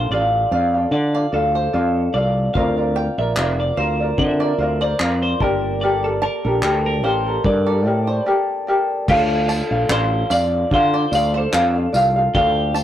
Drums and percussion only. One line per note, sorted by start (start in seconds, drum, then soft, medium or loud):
2.55 kick loud
3.36 clap loud
4.18 kick loud
5.00 clap loud
5.41 kick loud
6.63 clap medium
7.44 kick loud
9.08 kick loud
9.08 crash medium
9.49 tambourine medium
9.90 clap loud
10.31 tambourine medium
10.71 kick loud
11.13 tambourine medium
11.53 clap loud
11.94 tambourine medium
12.35 kick loud
12.76 tambourine medium